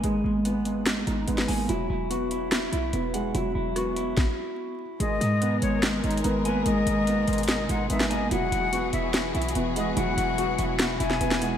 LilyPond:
<<
  \new Staff \with { instrumentName = "Flute" } { \time 4/4 \key gis \minor \tempo 4 = 145 r1 | r1 | r1 | dis''4. cis''8 r4. b'8 |
dis''2 dis''8 fis''8 e''8 dis''8 | fis''4. e''8 r4. dis''8 | fis''2 fis''8 gis''4. | }
  \new Staff \with { instrumentName = "Clean electric guitar" } { \time 4/4 \key gis \minor <gis gis''>8 gis8 b8 gis8 gis8 gis8 gis8 gis''8 | e'8 e'8 fis'8 e'8 e'8 e'8 e'8 fis''8 | e'8 e'8 fis'8 e'2~ e'8 | gis8 gis8 b8 gis8 gis8 gis8 gis8 gis''8 |
gis8 gis8 b8 gis8 gis8 gis8 gis8 gis''8 | e'8 e'8 fis'8 e'8 e'8 e'8 e'8 fis''8 | e'8 e'8 fis'8 e'8 e'8 e'8 e'8 fis''8 | }
  \new Staff \with { instrumentName = "Felt piano" } { \time 4/4 \key gis \minor <gis ais b dis'>4 b4. dis'8 b8 ais8 | fis4 b4. e'8 b8 gis8 | fis4 b2~ b8 r8 | gis4 b4. dis'8 b8 ais8 |
gis4 b4. dis'8 b8 ais8 | fis4 b4. e'8 b8 gis8 | fis4 b4. e'8 b8 gis8 | }
  \new Staff \with { instrumentName = "String section" } { \time 4/4 \key gis \minor << { r1 | r1 | r1 | <dis gis' ais'>1~ |
<dis gis' ais'>1 | <e fis'>1~ | <e fis'>1 | } \\ { r1 | r1 | r1 | b,1~ |
b,1~ | b,1~ | b,1 | } >> }
  \new Staff \with { instrumentName = "808-style bass" } { \clef bass \time 4/4 \key gis \minor gis,,8 gis,,2 gis,,8 gis,,8 gis,,8 | e,,8 e,,2 b,,8 e,,4 | e,,8 e,,4. r2 | gis,,8 gis,4 gis,,4 gis,,8 gis,,4 |
gis,,8 gis,,4 gis,,4 gis,,8 gis,,4 | e,,8 e,,4 e,,4 b,,8 e,,4 | e,,8 e,,4 e,,4 e,,8 e,,8 dis,,8 | }
  \new DrumStaff \with { instrumentName = "Drums" } \drummode { \time 4/4 hh4 hh8 hh8 <hh sn>8 hh8 hh16 sn16 hho8 | hh4 hh8 hh8 <hh sn>8 hh8 hh8 hh8 | hh4 <hh ss>8 hh8 <bd sn>4 r4 | hh8 hh8 hh8 hh8 \tuplet 3/2 { <hh sn>16 r16 r16 hh16 hh16 hh16 } hh8 hh8 |
hh8 hh8 hh8 <hh hho>32 hh32 hh32 hh32 <hh sn>8 hh8 hh16 sn16 hh8 | hh8 hh8 hh8 hh8 \tuplet 3/2 { <hh sn>16 r16 r16 hh16 hh16 hh16 } hh8 hh8 | hh8 hh8 hh8 hh8 <hh sn>8 hh16 sn16 hh16 sn16 hh8 | }
>>